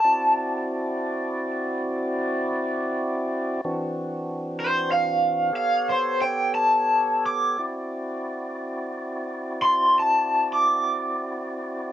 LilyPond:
<<
  \new Staff \with { instrumentName = "Overdriven electric guitar" } { \time 12/8 \key d \mixolydian \tempo 4. = 61 a''2~ a''8 r2. r8 | r4. c''8 f''4 f''8 c''8 g''8 a''4 d'''8 | r2 r8. c'''8 a''8. d'''2 | }
  \new Staff \with { instrumentName = "Tonewheel organ" } { \time 12/8 \key d \mixolydian <c' e' fis' d''>1. | <e c' d' fis'>2. <b g' a' cis''>2. | <c' e' fis' d''>1. | }
>>